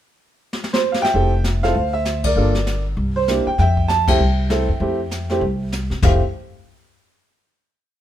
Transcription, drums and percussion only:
0, 0, Header, 1, 2, 480
1, 0, Start_track
1, 0, Key_signature, -1, "major"
1, 0, Tempo, 305344
1, 1800, Time_signature, 4, 2, 24, 8
1, 12589, End_track
2, 0, Start_track
2, 0, Title_t, "Drums"
2, 833, Note_on_c, 9, 38, 64
2, 990, Note_off_c, 9, 38, 0
2, 1002, Note_on_c, 9, 38, 59
2, 1156, Note_off_c, 9, 38, 0
2, 1156, Note_on_c, 9, 38, 65
2, 1313, Note_off_c, 9, 38, 0
2, 1483, Note_on_c, 9, 38, 73
2, 1640, Note_off_c, 9, 38, 0
2, 1642, Note_on_c, 9, 38, 71
2, 1794, Note_on_c, 9, 36, 28
2, 1799, Note_on_c, 9, 25, 41
2, 1800, Note_off_c, 9, 38, 0
2, 1951, Note_off_c, 9, 36, 0
2, 2266, Note_on_c, 9, 44, 45
2, 2268, Note_on_c, 9, 38, 50
2, 2423, Note_off_c, 9, 44, 0
2, 2425, Note_off_c, 9, 38, 0
2, 2574, Note_on_c, 9, 38, 34
2, 2731, Note_off_c, 9, 38, 0
2, 2751, Note_on_c, 9, 36, 32
2, 2757, Note_off_c, 9, 25, 0
2, 2757, Note_on_c, 9, 25, 45
2, 2909, Note_off_c, 9, 36, 0
2, 3227, Note_on_c, 9, 44, 53
2, 3229, Note_on_c, 9, 38, 52
2, 3385, Note_off_c, 9, 44, 0
2, 3386, Note_off_c, 9, 38, 0
2, 3516, Note_on_c, 9, 51, 62
2, 3523, Note_on_c, 9, 36, 62
2, 3674, Note_off_c, 9, 51, 0
2, 3680, Note_off_c, 9, 36, 0
2, 3706, Note_off_c, 9, 25, 0
2, 3706, Note_on_c, 9, 25, 42
2, 4002, Note_on_c, 9, 38, 39
2, 4159, Note_off_c, 9, 38, 0
2, 4190, Note_on_c, 9, 44, 47
2, 4192, Note_on_c, 9, 38, 49
2, 4348, Note_off_c, 9, 44, 0
2, 4349, Note_off_c, 9, 38, 0
2, 4673, Note_on_c, 9, 36, 32
2, 4680, Note_off_c, 9, 25, 0
2, 4680, Note_on_c, 9, 25, 48
2, 4831, Note_off_c, 9, 36, 0
2, 5154, Note_on_c, 9, 44, 57
2, 5156, Note_on_c, 9, 38, 52
2, 5311, Note_off_c, 9, 44, 0
2, 5313, Note_off_c, 9, 38, 0
2, 5633, Note_on_c, 9, 36, 30
2, 5636, Note_off_c, 9, 25, 0
2, 5636, Note_on_c, 9, 25, 43
2, 5636, Note_on_c, 9, 38, 34
2, 5790, Note_off_c, 9, 36, 0
2, 5793, Note_off_c, 9, 38, 0
2, 5928, Note_on_c, 9, 36, 47
2, 6086, Note_off_c, 9, 36, 0
2, 6117, Note_on_c, 9, 44, 46
2, 6119, Note_on_c, 9, 38, 55
2, 6274, Note_off_c, 9, 44, 0
2, 6276, Note_off_c, 9, 38, 0
2, 6409, Note_on_c, 9, 36, 79
2, 6411, Note_on_c, 9, 51, 70
2, 6566, Note_off_c, 9, 36, 0
2, 6568, Note_off_c, 9, 51, 0
2, 6602, Note_off_c, 9, 25, 0
2, 6602, Note_on_c, 9, 25, 48
2, 7073, Note_on_c, 9, 44, 47
2, 7074, Note_on_c, 9, 38, 54
2, 7230, Note_off_c, 9, 44, 0
2, 7232, Note_off_c, 9, 38, 0
2, 7553, Note_on_c, 9, 36, 30
2, 7561, Note_off_c, 9, 25, 0
2, 7561, Note_on_c, 9, 25, 39
2, 7710, Note_off_c, 9, 36, 0
2, 8036, Note_on_c, 9, 44, 51
2, 8038, Note_on_c, 9, 38, 49
2, 8194, Note_off_c, 9, 44, 0
2, 8195, Note_off_c, 9, 38, 0
2, 8325, Note_on_c, 9, 38, 38
2, 8482, Note_off_c, 9, 38, 0
2, 8511, Note_on_c, 9, 36, 33
2, 8514, Note_off_c, 9, 25, 0
2, 8514, Note_on_c, 9, 25, 41
2, 8668, Note_off_c, 9, 36, 0
2, 8998, Note_on_c, 9, 44, 55
2, 8999, Note_on_c, 9, 38, 52
2, 9155, Note_off_c, 9, 44, 0
2, 9157, Note_off_c, 9, 38, 0
2, 9290, Note_on_c, 9, 38, 32
2, 9447, Note_off_c, 9, 38, 0
2, 9472, Note_on_c, 9, 36, 83
2, 9474, Note_on_c, 9, 43, 88
2, 9474, Note_on_c, 9, 52, 68
2, 9629, Note_off_c, 9, 36, 0
2, 9631, Note_off_c, 9, 43, 0
2, 9631, Note_off_c, 9, 52, 0
2, 9849, Note_off_c, 9, 25, 0
2, 12589, End_track
0, 0, End_of_file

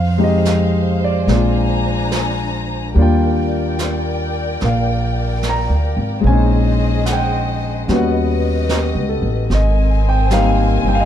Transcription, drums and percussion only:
0, 0, Header, 1, 2, 480
1, 0, Start_track
1, 0, Key_signature, -3, "major"
1, 0, Tempo, 828729
1, 1711, Time_signature, 4, 2, 24, 8
1, 2188, Tempo, 814111
1, 6477, End_track
2, 0, Start_track
2, 0, Title_t, "Drums"
2, 262, Note_on_c, 9, 38, 37
2, 262, Note_on_c, 9, 44, 48
2, 320, Note_off_c, 9, 38, 0
2, 320, Note_off_c, 9, 44, 0
2, 741, Note_on_c, 9, 25, 37
2, 741, Note_on_c, 9, 38, 24
2, 799, Note_off_c, 9, 38, 0
2, 1226, Note_on_c, 9, 38, 38
2, 1226, Note_on_c, 9, 44, 49
2, 1283, Note_off_c, 9, 38, 0
2, 1283, Note_off_c, 9, 44, 0
2, 1715, Note_off_c, 9, 25, 0
2, 1715, Note_on_c, 9, 25, 28
2, 2194, Note_on_c, 9, 38, 38
2, 2194, Note_on_c, 9, 44, 49
2, 2253, Note_off_c, 9, 38, 0
2, 2253, Note_off_c, 9, 44, 0
2, 2676, Note_off_c, 9, 25, 0
2, 2676, Note_on_c, 9, 25, 29
2, 2676, Note_on_c, 9, 38, 24
2, 2735, Note_off_c, 9, 38, 0
2, 3161, Note_on_c, 9, 38, 41
2, 3161, Note_on_c, 9, 44, 40
2, 3220, Note_off_c, 9, 38, 0
2, 3220, Note_off_c, 9, 44, 0
2, 3638, Note_off_c, 9, 25, 0
2, 3638, Note_on_c, 9, 25, 34
2, 4124, Note_on_c, 9, 38, 38
2, 4124, Note_on_c, 9, 44, 50
2, 4183, Note_off_c, 9, 38, 0
2, 4183, Note_off_c, 9, 44, 0
2, 4610, Note_off_c, 9, 25, 0
2, 4610, Note_on_c, 9, 25, 30
2, 4610, Note_on_c, 9, 38, 26
2, 4669, Note_off_c, 9, 38, 0
2, 5086, Note_on_c, 9, 38, 40
2, 5086, Note_on_c, 9, 44, 43
2, 5145, Note_off_c, 9, 38, 0
2, 5145, Note_off_c, 9, 44, 0
2, 5565, Note_off_c, 9, 25, 0
2, 5565, Note_on_c, 9, 25, 33
2, 5565, Note_on_c, 9, 38, 24
2, 5624, Note_off_c, 9, 38, 0
2, 6037, Note_on_c, 9, 38, 41
2, 6037, Note_on_c, 9, 44, 49
2, 6096, Note_off_c, 9, 38, 0
2, 6096, Note_off_c, 9, 44, 0
2, 6477, Note_off_c, 9, 25, 0
2, 6477, End_track
0, 0, End_of_file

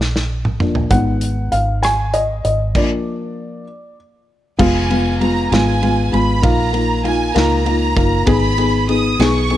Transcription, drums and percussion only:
0, 0, Header, 1, 2, 480
1, 0, Start_track
1, 0, Tempo, 613497
1, 714, Time_signature, 6, 3, 24, 8
1, 7489, End_track
2, 0, Start_track
2, 0, Title_t, "Drums"
2, 7, Note_on_c, 9, 38, 44
2, 86, Note_off_c, 9, 38, 0
2, 124, Note_on_c, 9, 38, 52
2, 202, Note_off_c, 9, 38, 0
2, 352, Note_on_c, 9, 47, 61
2, 431, Note_off_c, 9, 47, 0
2, 471, Note_on_c, 9, 45, 91
2, 549, Note_off_c, 9, 45, 0
2, 588, Note_on_c, 9, 43, 77
2, 666, Note_off_c, 9, 43, 0
2, 709, Note_on_c, 9, 42, 78
2, 710, Note_on_c, 9, 36, 100
2, 787, Note_off_c, 9, 42, 0
2, 789, Note_off_c, 9, 36, 0
2, 948, Note_on_c, 9, 42, 50
2, 1026, Note_off_c, 9, 42, 0
2, 1190, Note_on_c, 9, 42, 41
2, 1268, Note_off_c, 9, 42, 0
2, 1435, Note_on_c, 9, 42, 72
2, 1445, Note_on_c, 9, 37, 85
2, 1513, Note_off_c, 9, 42, 0
2, 1523, Note_off_c, 9, 37, 0
2, 1671, Note_on_c, 9, 42, 44
2, 1749, Note_off_c, 9, 42, 0
2, 1915, Note_on_c, 9, 42, 42
2, 1993, Note_off_c, 9, 42, 0
2, 2151, Note_on_c, 9, 49, 90
2, 2152, Note_on_c, 9, 36, 97
2, 2230, Note_off_c, 9, 36, 0
2, 2230, Note_off_c, 9, 49, 0
2, 3594, Note_on_c, 9, 36, 109
2, 3596, Note_on_c, 9, 49, 100
2, 3673, Note_off_c, 9, 36, 0
2, 3674, Note_off_c, 9, 49, 0
2, 3838, Note_on_c, 9, 51, 46
2, 3916, Note_off_c, 9, 51, 0
2, 4078, Note_on_c, 9, 51, 38
2, 4156, Note_off_c, 9, 51, 0
2, 4321, Note_on_c, 9, 51, 58
2, 4332, Note_on_c, 9, 38, 85
2, 4400, Note_off_c, 9, 51, 0
2, 4410, Note_off_c, 9, 38, 0
2, 4558, Note_on_c, 9, 51, 40
2, 4636, Note_off_c, 9, 51, 0
2, 4801, Note_on_c, 9, 51, 34
2, 4879, Note_off_c, 9, 51, 0
2, 5035, Note_on_c, 9, 36, 118
2, 5036, Note_on_c, 9, 51, 76
2, 5113, Note_off_c, 9, 36, 0
2, 5115, Note_off_c, 9, 51, 0
2, 5272, Note_on_c, 9, 51, 44
2, 5350, Note_off_c, 9, 51, 0
2, 5515, Note_on_c, 9, 51, 37
2, 5594, Note_off_c, 9, 51, 0
2, 5756, Note_on_c, 9, 51, 61
2, 5766, Note_on_c, 9, 38, 78
2, 5834, Note_off_c, 9, 51, 0
2, 5844, Note_off_c, 9, 38, 0
2, 5993, Note_on_c, 9, 51, 40
2, 6072, Note_off_c, 9, 51, 0
2, 6232, Note_on_c, 9, 36, 88
2, 6235, Note_on_c, 9, 51, 39
2, 6311, Note_off_c, 9, 36, 0
2, 6313, Note_off_c, 9, 51, 0
2, 6468, Note_on_c, 9, 51, 73
2, 6472, Note_on_c, 9, 36, 112
2, 6546, Note_off_c, 9, 51, 0
2, 6550, Note_off_c, 9, 36, 0
2, 6711, Note_on_c, 9, 51, 44
2, 6790, Note_off_c, 9, 51, 0
2, 6953, Note_on_c, 9, 51, 38
2, 7031, Note_off_c, 9, 51, 0
2, 7196, Note_on_c, 9, 51, 64
2, 7206, Note_on_c, 9, 38, 96
2, 7274, Note_off_c, 9, 51, 0
2, 7285, Note_off_c, 9, 38, 0
2, 7432, Note_on_c, 9, 51, 38
2, 7489, Note_off_c, 9, 51, 0
2, 7489, End_track
0, 0, End_of_file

